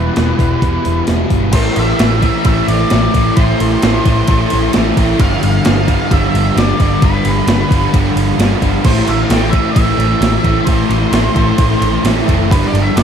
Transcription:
Already playing: E2 B2 E3 G3 B3 E4 B4
0.16 E1 E2 B2 E3, snare, open hi-hat
0.38 E1 E3 G3 B3 E4, kick, open hi-hat
0.62 E1 E2 B2 E3, kick, open hi-hat
0.85 E1 B2 E3, open hi-hat
1.07 E1 E2 B2 E3, snare, open hi-hat
1.30 G1, kick, open hi-hat
1.53 A1 A2 E3 A3 C4 E4 C5, kick, crash, ride
1.76 A1 E3 A3 C4 E4 E5, ride
1.98 A1 A2 E3 A3 C4 E4, snare, ride
2.22 A2 E3 A3 C4 E4, kick, ride
2.44 A1 A2 E3 A3 C4 E4 E5, kick, ride
2.68 A1 E3 A3 C4 E4 D5, ride
2.90 A1 A2 E3 A3 C4 E4, snare, ride
3.13 A1 A2 E3 A3 C4 E4, kick, ride
3.18 E3
3.36 A1 A2 E3 A3 C4 E4 C5, kick, ride
3.59 A1 A3 C4 E4, ride
3.63 E3
3.82 A1 A2 E3 A3 C4 E4, snare, ride
4.05 A1 A2 E3 A3 C4 E4, kick, ride
4.27 A1 A2 E3 A3 C4 E4, kick, ride
4.50 A1 A3 C4 E4, ride
4.55 E3
4.73 A1 A2 E3 A3 C4 E4, snare, ride
4.96 A1 A2 E3 A3 C4 E4, kick, ride
5.20 G1 G2 D3 F3 G3 B3 F4 F5, kick, ride
5.42 G1 F3 G3 B3 F4 F5, ride
5.46 D3
5.65 G1 G2 D3 F3 G3 B3 F4, snare, ride
5.87 G2 D3 F3 G3 B3 F4, kick, ride
6.11 G1 G2 D3 F3 G3 B3 F4 E5, kick, ride
6.34 G1 D3 F3 G3 B3 F4, ride
6.56 G1 G2 D3 F3 G3 B3 F4 D5, snare, ride
6.80 G1 G2 D3 F3 G3 B3 F4 D5, kick, ride
7.02 G1 G2 D3 F3 G3 B3 F4 B4, kick, ride
7.24 G1 D3 F3 G3 B3 F4, ride
7.47 G1 G2 D3 F3 G3 B3 F4, snare, ride
7.71 G1 G2 D3 F3 G3 B3 F4, kick, ride
7.93 G1 G2 D3 F3 G3 B3 F4, kick, ride
8.16 G1 D3 F3 G3 B3 F4, ride
8.38 G1 G2 D3 F3 G3 B3 F4, snare, ride
8.62 G1 G2 D3 F3 G3 B3 F4, kick, ride
8.84 A1 A2 E3 A3 C4 E4 C5, kick, crash
9.06 A1 E3 A3 C4 E4 E5, ride
9.22 F5
9.29 A1 A2 E3 A3 C4 E4, snare, ride
9.33 G5
9.50 A3 C4 E4 E5, kick, ride
9.55 A2 E3
9.71 E3 E5
9.75 A1 A2 A3 C4 E4, kick, ride
9.97 A1 E3 A3 C4 E4, ride
10.21 A1 A2 E3 A3 C4 E4, snare, ride
10.44 A1 A2 E3 A3 C4 E4, kick, ride
10.65 A1 A2 E3 A3 C4 C5, kick, ride
10.69 E4
10.89 A1 E3 A3 C4 E4, ride
11.11 A1 A2 E3 A3 C4 E4, snare, ride
11.34 A1 A2 E3 A3 C4 E4, kick, ride
11.58 A1 A2 E3 A3 C4 E4, kick, ride
11.80 A1 E3 A3 C4 E4, ride
12.03 A1 A2 E3 A3 C4 E4, snare, ride
12.27 F#1 A2 E3 A3 C4 E4, kick, ride
12.50 G1 G2 D3 F3 G3 B3 D4 B4, kick, ride
12.67 D5
12.73 G1 F3 G3 B3 D4, ride
12.77 D3
12.82 E5
12.96 G1 G2 D3 F3 G3 B3 D4 D5, snare, ride

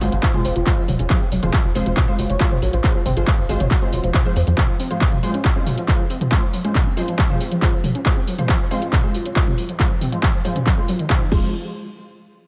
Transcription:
0.01 G#1 F#3 G#3 F4 C5, open hi-hat
0.12 G#1 F3, closed hi-hat
0.23 F3, kick, clap, closed hi-hat
0.34 F3 G#3 F4 C5, mid tom
0.45 F1 C4, open hi-hat
0.56 F1 F3, closed hi-hat
0.66 F3 G#3 F4 C5, kick, clap, closed hi-hat
0.78 F3
0.88 F1 F#3, mid tom, open hi-hat
0.99 F1 C#4, closed hi-hat
1.10 F#3 G#3 F4 C5, kick, clap, closed hi-hat
1.21 C4
1.32 F1 F#3, open hi-hat
1.43 F1 F3 G#3 F4 C5, closed hi-hat, mid tom
1.53 F3, kick, clap, closed hi-hat
1.65 F1 F3
1.75 F1 G#3 C4 F4 C5, open hi-hat
1.86 F1 F3, closed hi-hat
1.97 F3, kick, clap, closed hi-hat, mid tom
2.08 F3 G#3 F4 C5
2.19 F#1 F#3, open hi-hat
2.30 F#1 C#4, closed hi-hat
2.40 F#3 G#3 F4 C5, kick, clap, closed hi-hat
2.51 C4, mid tom
2.62 A#1 F#3, open hi-hat
2.73 A#1 F3, closed hi-hat
2.84 F3 G#3 F4 C5, kick, clap, closed hi-hat
2.95 F3
3.06 G#1 C4, mid tom, open hi-hat
3.17 G#1 F3 G#3 F4 C5, closed hi-hat
3.27 F3, kick, clap, closed hi-hat
3.38 G#1 F3
3.49 G#1 F#3 G#3 F4 C5, open hi-hat
3.60 G#1 C#4, closed hi-hat, mid tom
3.71 F#3, kick, clap, closed hi-hat
3.82 G#3 C4 F4 C5
3.93 F1 F#3, open hi-hat
4.04 F1 F3, closed hi-hat
4.14 F3, kick, clap, closed hi-hat, mid tom
4.25 F3 G#3 F4 C5
4.36 F2 C4, open hi-hat
4.47 F2 F3, closed hi-hat
4.58 F3 G#3 F4 C5, kick, clap, closed hi-hat, mid tom
4.69 F3
4.80 C4, open hi-hat
4.91 F3 G#3 F4 C5, closed hi-hat
5.01 F3, kick, clap, closed hi-hat
5.12 F3, mid tom
5.23 F#3 G#3 F4 C5, open hi-hat
5.34 C#4, closed hi-hat
5.45 F#3, kick, clap, closed hi-hat
5.56 G#3 C4 F4 C5
5.67 F#3, mid tom, open hi-hat
5.78 F3, closed hi-hat
5.88 F3 G#3 F4 C5, kick, clap, closed hi-hat
5.99 F3
6.10 C4, open hi-hat
6.21 F3, closed hi-hat, mid tom
6.32 G#3 F4 C5, kick, clap, closed hi-hat
6.43 F3
6.53 F#3, open hi-hat
6.64 G#3 C#4 F4 C5, closed hi-hat
6.75 F#3, kick, clap, closed hi-hat, mid tom
6.86 C4
6.97 F#3 G#3 F4 C5, open hi-hat
7.08 F3, closed hi-hat
7.19 F3, kick, clap, closed hi-hat
7.30 F3 G#3 F4 C5, mid tom
7.40 C4, open hi-hat
7.52 F3, closed hi-hat
7.62 F3 G#3 F4 C5, kick, clap, closed hi-hat
7.73 F3
7.84 F#3, mid tom, open hi-hat
7.95 C#4, closed hi-hat
8.06 F#3 G#3 F4 C5, kick, clap, closed hi-hat
8.17 C4
8.27 F#3, open hi-hat
8.38 F3 G#3 F4 C5, closed hi-hat, mid tom
8.49 F3, kick, clap, closed hi-hat
8.60 F3
8.71 G#3 C4 F4 C5, open hi-hat
8.82 F3, closed hi-hat
8.93 F3, kick, clap, closed hi-hat, mid tom
9.04 F3 G#3 F4 C5
9.14 F#3, open hi-hat
9.25 C#4, closed hi-hat
9.36 F#3 G#3 F4 C5, kick, clap, closed hi-hat
9.47 C4, mid tom
9.58 F#3, open hi-hat
9.69 F3, closed hi-hat
9.80 F3 G#3 F4 C5, kick, clap, closed hi-hat
9.91 F3
10.01 C4, mid tom, open hi-hat
10.12 F3 G#3 F4 C5, closed hi-hat
10.23 F3, kick, clap, closed hi-hat
10.34 F3
10.45 F#3 G#3 F4 C5, open hi-hat
10.56 C#4, closed hi-hat, mid tom
10.67 F#3, kick, clap, closed hi-hat
10.78 G#3 C4 F4 C5
10.88 F#3, open hi-hat
10.99 D#3, closed hi-hat
11.10 F3 G#3 F4 C5, kick, clap, closed hi-hat, mid tom
11.21 D#3
11.32 F1 F3 G#3 F4 C5, kick, crash

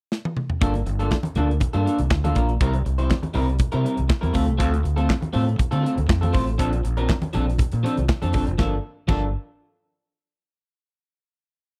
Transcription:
0.12 snare
0.25 high tom
0.37 mid tom
0.50 floor tom
0.61 G1 A#3 D4 F4 A4, kick, closed hi-hat, muted conga
0.74 muted clean electric guitar stroke, closed hi-hat, muted conga
0.86 G1, muted clean electric guitar stroke, closed hi-hat
0.99 A#3 D4 F4 A4, closed hi-hat
1.11 kick, snare, clap, muted conga, high conga
1.23 muted clean electric guitar stroke, closed hi-hat, muted conga, high conga
1.35 D2 A#3 D4 F4 A4, closed hi-hat, low conga
1.49 muted clean electric guitar stroke, closed hi-hat
1.60 muted clean electric guitar stroke, muted fingered electric bass stroke, kick, closed hi-hat, muted conga, low conga
1.73 G2 A#3 D4 F4 A4, closed hi-hat, muted conga
1.85 A#3 D4 F4 A4, closed hi-hat
1.99 C2, muted clean electric guitar stroke, closed hi-hat, high conga
2.11 D2, muted clean electric guitar stroke, kick, snare, clap
2.24 A#3 D4 F4 A4, closed hi-hat, muted conga, high conga
2.35 A#1 A#3 D4 F4 A#4, kick, closed hi-hat, low conga
2.49 muted clean electric guitar stroke, closed hi-hat
2.61 C2 G3 C4 E4 A#4, kick, closed hi-hat
2.74 muted clean electric guitar stroke, closed hi-hat, muted conga
2.85 C2, muted clean electric guitar stroke, closed hi-hat
2.98 G3 C4 E4 C5, closed hi-hat
3.10 kick, snare, clap, muted conga, high conga
3.23 muted clean electric guitar stroke, closed hi-hat, muted conga, high conga
3.34 C2 G3 C4 E4 A#4, open hi-hat, low conga
3.48 muted clean electric guitar stroke, closed hi-hat
3.59 muted clean electric guitar stroke, muted fingered electric bass stroke, kick, closed hi-hat, muted conga, low conga
3.72 C3 G3 C4 E4 A#4, closed hi-hat, muted conga
3.84 G3 C4 E4 A#4, closed hi-hat
3.96 C2, muted clean electric guitar stroke, closed hi-hat, high conga
4.08 muted clean electric guitar stroke, kick, snare, clap
4.21 E2 G3 C4 E4 A#4, closed hi-hat, muted conga, high conga
4.33 D2 A3 C4 F4 A4, kick, open hi-hat, low conga
4.46 C2, muted clean electric guitar stroke, closed hi-hat
4.58 D2 A3 C4 F4 A4, kick, closed hi-hat
4.71 muted clean electric guitar stroke, closed hi-hat
4.83 D2, muted clean electric guitar stroke, closed hi-hat
4.96 A3 C4 F4 A4, closed hi-hat
5.10 kick, snare, clap, muted conga, high conga
5.21 muted clean electric guitar stroke, closed hi-hat, high conga
5.33 A2 A3 C4 F4 A4, open hi-hat, low conga
5.46 muted clean electric guitar stroke, closed hi-hat
5.58 muted clean electric guitar stroke, muted fingered electric bass stroke, kick, closed hi-hat, muted conga, low conga
5.71 D3 A3 C4 F4 A4, closed hi-hat, muted conga
5.82 A3 C4 F4 A4
5.86 closed hi-hat
5.96 D2, muted clean electric guitar stroke, closed hi-hat, high conga
6.08 F2, muted clean electric guitar stroke, kick, snare, clap
6.21 A3 C4 F4 A4, closed hi-hat, muted conga, high conga
6.32 A1 A3 C4 F4 C5, kick, open hi-hat, low conga
6.46 muted clean electric guitar stroke, closed hi-hat
6.58 A#1 F3 C4 D4 A4, kick, closed hi-hat
6.72 muted clean electric guitar stroke, closed hi-hat
6.84 A#1, muted clean electric guitar stroke, closed hi-hat
6.97 F3 C4 D4 A#4, closed hi-hat
7.09 kick, snare, clap, high conga
7.22 muted clean electric guitar stroke, closed hi-hat, muted conga, high conga
7.33 A#1 F3 C4 D4 A4, closed hi-hat, low conga
7.47 muted clean electric guitar stroke, closed hi-hat
7.58 muted clean electric guitar stroke, muted fingered electric bass stroke, kick, closed hi-hat, muted conga, low conga
7.72 A#2, muted clean electric guitar stroke, closed hi-hat, muted conga
7.83 F3 C4 D4 A4, closed hi-hat
7.97 C2, muted clean electric guitar stroke, closed hi-hat, high conga
8.09 muted clean electric guitar stroke, kick, snare, clap, muted conga
8.22 F2 F3 C4 D4 A4, closed hi-hat, high conga
8.33 G1 F3 C4 D4 A4, kick, open hi-hat, low conga
8.46 F1, muted clean electric guitar stroke, closed hi-hat
8.58 G1 F3 A#3 D4 A4, kick, snare, high conga
9.08 G1 F3 A#3 D4 A4, kick, crash, high conga

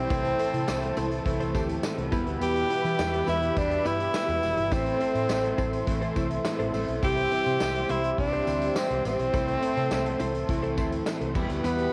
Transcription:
Already playing: E3 G3 C4 E4 C5
0.10 C2 A2 E3 A3 C4 E4 A4 C5 A5, kick, closed hi-hat, tambourine
0.25 closed hi-hat
0.39 C4 E4 A4 C5, closed hi-hat, tambourine
0.53 C3 C4 E4 A4 C5, closed hi-hat
0.67 C2 A2 E3 A3, snare, tambourine
0.82 muted clean electric guitar stroke, closed hi-hat
0.97 C2 C4 E4 A4 C5, closed hi-hat, tambourine
1.11 muted clean electric guitar stroke, closed hi-hat
1.25 C2 A2 E3 A3 C4 E4, muted clean electric guitar stroke, kick, closed hi-hat
1.40 C4 E4 A4 C5, closed hi-hat
1.54 D2 E3 A3 C4 E4 G4 A4 C5, kick, closed hi-hat, tambourine
1.69 muted clean electric guitar stroke, closed hi-hat
1.83 muted clean electric guitar stroke, snare, tambourine
1.98 C2, muted clean electric guitar stroke, closed hi-hat
2.11 E2 B2 E3 G3 B3 E4 G4 B4 E5 B5, kick, closed hi-hat, tambourine
2.26 D2 B3 E4 G4 B4, closed hi-hat
2.41 E2 B3 E4 G4 B4, closed hi-hat, tambourine
2.55 muted clean electric guitar stroke, closed hi-hat
2.69 B3 E4 G4 B4, closed hi-hat
2.84 E3 B3 E4 G4 B4, closed hi-hat
2.98 E2 B2 E3, snare, tambourine
3.13 muted clean electric guitar stroke, closed hi-hat
3.27 E2 B3 E4 G4 B4, closed hi-hat, tambourine
3.42 muted clean electric guitar stroke, closed hi-hat
3.55 E2 B2 E3 G3 B3 D4 G4, muted clean electric guitar stroke, kick, closed hi-hat, tambourine
3.71 muted clean electric guitar stroke, closed hi-hat
3.85 G2 E3 G3 B3 E4 G4 B4, closed hi-hat, tambourine
3.99 muted clean electric guitar stroke, closed hi-hat
4.14 muted clean electric guitar stroke, snare, tambourine
4.28 E2, muted clean electric guitar stroke, closed hi-hat
4.43 F1, closed hi-hat, tambourine
4.57 G1, muted clean electric guitar stroke, closed hi-hat
4.71 A1 A2 E3 A3 C4 E4 A4 C5 C6, kick, closed hi-hat, tambourine
4.86 muted clean electric guitar stroke, closed hi-hat
5.00 C4 E4 A4 C5, closed hi-hat
5.15 A2 C4 E4 A4 C5, closed hi-hat
5.29 A1 A2 E3 A3, snare, tambourine
5.43 muted clean electric guitar stroke, closed hi-hat
5.58 A1 C4 E4 A4 C5, kick, closed hi-hat, tambourine
5.73 muted clean electric guitar stroke, closed hi-hat
5.87 A1 A2 E3 A3 C4 E4, muted clean electric guitar stroke, kick, closed hi-hat, tambourine
6.01 C4 E4 A4 C5, closed hi-hat
6.15 C2 E3 A3 C4 E4 A4 C5, kick, closed hi-hat, tambourine
6.30 muted clean electric guitar stroke, closed hi-hat
6.45 muted clean electric guitar stroke, snare, tambourine
6.59 A1 C4 E4 A4 C5, closed hi-hat
6.73 A1 E3 A3 C4 E4 A4 C5, open hi-hat, tambourine
6.88 B1, muted clean electric guitar stroke, closed hi-hat
7.02 C2 C3 E3 G3 C4 E4 G4 C5 C6, kick, closed hi-hat, tambourine
7.17 muted clean electric guitar stroke, closed hi-hat
7.31 C4 E4 G4 C5, closed hi-hat, tambourine
7.46 C3 C4 E4 G4 C5, closed hi-hat
7.60 C2 C3 G3 C4, snare, tambourine
7.75 muted clean electric guitar stroke, closed hi-hat
7.89 C2 C4 E4 G4 C5, closed hi-hat, tambourine
8.03 muted clean electric guitar stroke, closed hi-hat
8.17 C2 C3 E3 G3 C4 D4 E4, muted clean electric guitar stroke, kick, closed hi-hat, tambourine
8.32 C4 E4 G4 C5, closed hi-hat
8.46 D2 E3 G3 C4 E4 G4 C5, closed hi-hat, tambourine
8.61 muted clean electric guitar stroke, closed hi-hat
8.76 C4, muted clean electric guitar stroke, snare, tambourine
8.90 C2, muted clean electric guitar stroke, closed hi-hat
9.04 A1 G3 C4, closed hi-hat, tambourine
9.19 B1, muted clean electric guitar stroke, closed hi-hat
9.32 C2 A2 E3 A3 C4 E4 A4 C5, kick, closed hi-hat, tambourine
9.48 muted clean electric guitar stroke, closed hi-hat
9.62 C4 E4 A4 C5, closed hi-hat, tambourine
9.76 C3 C4 E4 A4 C5, closed hi-hat
9.91 C2, snare, tambourine
10.05 muted clean electric guitar stroke, closed hi-hat
10.19 C2 C4 E4 A4 C5, closed hi-hat, tambourine
10.34 muted clean electric guitar stroke, closed hi-hat
10.48 C2 A2 E3 A3 C4 E4, muted clean electric guitar stroke, kick, closed hi-hat
10.63 C4 E4 A4 C5, closed hi-hat
10.77 D2 E3 A3 C4 E4 A4 C5, kick, closed hi-hat, tambourine
10.92 muted clean electric guitar stroke, closed hi-hat
11.06 muted clean electric guitar stroke, snare, tambourine
11.21 C2, muted clean electric guitar stroke, closed hi-hat
11.35 E2 B2 E3 G3 B3 E4 G4 B4 B5, kick, tambourine, crash
11.50 D2, muted clean electric guitar stroke, closed hi-hat
11.63 E2 B2 E3 B3 E4 G4 B4, closed hi-hat, tambourine
11.78 muted clean electric guitar stroke, closed hi-hat

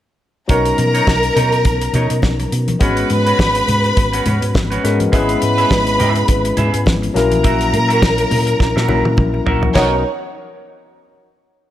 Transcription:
0.48 B1 F#3 B3 C#4 D#4 A#4 C#5 A#5, kick, closed hi-hat
0.65 closed hi-hat
0.78 B2, muted clean electric guitar stroke, closed hi-hat, muted conga
0.94 D#4 A#4 C#5, closed hi-hat
1.07 B1, kick, snare, high conga
1.23 muted clean electric guitar stroke, closed hi-hat
1.36 B2 D#4 A#4 C#5, closed hi-hat, low conga
1.52 muted clean electric guitar stroke, closed hi-hat
1.65 B1, kick, closed hi-hat, muted conga
1.81 muted clean electric guitar stroke, closed hi-hat
1.94 B2 D#4 A#4 C#5, closed hi-hat, muted conga, low conga
2.10 B2, muted clean electric guitar stroke, closed hi-hat
2.22 B1, muted clean electric guitar stroke, kick, snare, high conga
2.40 muted clean electric guitar stroke, closed hi-hat
2.52 B2, closed hi-hat
2.68 muted clean electric guitar stroke, closed hi-hat, high conga
2.79 G#1 G#3 B3 C#4 F#4 B4 B5, kick, closed hi-hat
2.97 closed hi-hat
3.10 G#2, muted clean electric guitar stroke, closed hi-hat, muted conga
3.26 C#4 F#4 B4, closed hi-hat
3.39 G#1, muted clean electric guitar stroke, kick, snare, high conga
3.55 muted clean electric guitar stroke, closed hi-hat
3.68 G#2, closed hi-hat, low conga
3.84 muted clean electric guitar stroke, closed hi-hat
3.97 G#1, muted clean electric guitar stroke, kick, closed hi-hat, muted conga
4.13 C#4 F#4 B4, closed hi-hat
4.25 G#2 C#4 F#4 B4, closed hi-hat, muted conga, low conga
4.42 G#2, muted clean electric guitar stroke, closed hi-hat
4.55 G#1, muted clean electric guitar stroke, kick, snare, high conga
4.71 C#4 F#4 B4, closed hi-hat
4.83 G#2 G#3 B3 C#4 F#4 A#4 B4, snare, closed hi-hat
5.00 muted clean electric guitar stroke, closed hi-hat, high conga
5.12 G#1 G#3 B3 C#4 E4 G#4 B4 E5 B5, kick, closed hi-hat
5.29 closed hi-hat
5.42 G#2, muted clean electric guitar stroke, closed hi-hat, muted conga
5.58 G#4 B4 E5, closed hi-hat
5.71 G#1, kick, snare, high conga
5.87 muted clean electric guitar stroke, closed hi-hat
5.99 G#2 G#4 B4 E5, closed hi-hat, low conga
6.16 muted clean electric guitar stroke, closed hi-hat
6.28 G#1, kick, closed hi-hat, muted conga
6.45 muted clean electric guitar stroke, closed hi-hat
6.57 G#2 G#4 B4 E5, closed hi-hat, muted conga, low conga
6.73 G#2, muted clean electric guitar stroke, closed hi-hat
6.86 G#1, muted clean electric guitar stroke, kick, snare, high conga
7.02 muted clean electric guitar stroke, closed hi-hat
7.14 A#1 F#3 A#3 C#4 E4 A#4 A#5, snare, closed hi-hat
7.31 muted clean electric guitar stroke, closed hi-hat, high conga
7.43 F#4 A#4 E5, kick, closed hi-hat
7.61 closed hi-hat
7.73 A#2, muted clean electric guitar stroke, closed hi-hat, muted conga
7.89 F#4 A#4 E5, closed hi-hat
8.02 A#1, muted clean electric guitar stroke, kick, snare, high conga
8.18 muted clean electric guitar stroke, closed hi-hat
8.31 A#2, open hi-hat, low conga
8.47 muted clean electric guitar stroke, closed hi-hat
8.60 A#1, muted clean electric guitar stroke, kick, snare, muted conga
8.76 A#2 F#4 A#4 E5, snare
8.88 A#1 F#3 A#3 C#4 E4 F#4 A#4 E5, muted conga, low conga
9.05 A#2, muted clean electric guitar stroke, high tom
9.17 A#1, kick, mid tom, high conga
9.34 muted clean electric guitar stroke, high conga
9.46 A#1 F#4 A#4 E5, floor tom
9.63 muted clean electric guitar stroke, floor tom, high conga
9.75 B1 F#3 B3 C#4 D#4 A#4 C#5 F#5, kick, snare, crash, muted conga

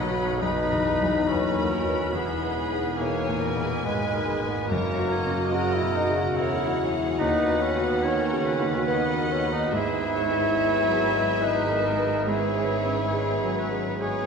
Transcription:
Already playing: B1 B2 F#3 D#4 B4 C#5 D#5 B5
0.11 F#4
0.39 F#2 F#3 D#4 G#4 B4 B5
0.73 E2
1.02 F#2
1.28 D#2 C#4 F#4 B4
1.58 A#4
1.70 A#4
1.87 B4
2.13 E1 E2 G#3 B3 D#4 E4 G#4
2.43 B4
2.55 G#4
2.72 G#4
2.98 B2 A#3 G#4 C#5 G#5
3.28 A#2
3.41 A#4 B4
3.56 B2
3.84 G#1 G#2 G#3 D#4 B4
4.14 A#4
4.44 B4
4.48 B3
4.68 F#1 F#2 A#3 C#4 F#4 A#4 C#5 A#5
4.99 F#4
5.11 C#5 D#5
5.26 C#4
5.52 C#3 C#4 F#4 A#4 A#5
5.74 E4
5.81 B2
5.95 D#4
6.09 C#3
6.15 F#4
6.36 E1 E2 E4 F#4 A#4 C#5 F#5
6.63 E4
6.78 G#4
6.92 F#4
7.18 D#2 B3 D#4 F#4 B4
7.49 B4
7.61 C#4
7.76 F#4
7.83 B3
8.02 D#3 C#4 A#4 C#5
8.07 C#4
8.32 C#3
8.45 B4
8.60 D#3
8.86 B3 F#4 B4 D#5 F#5
8.91 B3
9.17 A#4
9.31 C#4
9.44 B4
9.52 D#4
9.71 G#1 G#2 B3 E4 G#4 B4 E5
10.01 B4
10.15 C#5
10.29 E4
10.57 G#3
10.84 F#3
11.13 G#3
11.41 D#4 B4
11.69 A#4
11.86 A#4
11.97 B4
12.27 G#2 B3 C#4 E4 G#4 B4 C#5
12.56 C#5
12.84 C#4
13.13 G#3 G#4
13.42 F#3
13.58 B4
13.71 G#3
13.99 B3 C#4 G#4 B4 C#5

